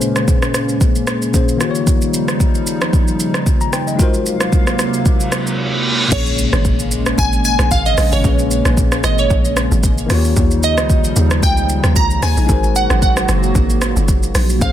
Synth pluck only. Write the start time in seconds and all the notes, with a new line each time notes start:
6.12 C#5
7.19 G#5
7.45 G#5
7.72 F5
7.86 D#5
8.13 C#5
9.04 D#5
9.19 C#5
10.64 D#5
11.43 G5
11.96 A#5
12.23 G#5
12.76 F#5
13.02 F#5
14.62 F5